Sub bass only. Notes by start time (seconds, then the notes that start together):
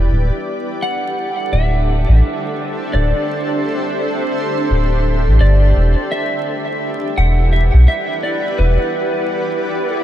0.12 D1
1.53 D1
2.09 A1
2.94 D1
4.70 D1
5.26 A1
5.41 G1
5.76 E1
7.17 E1
7.74 B1
8.59 E1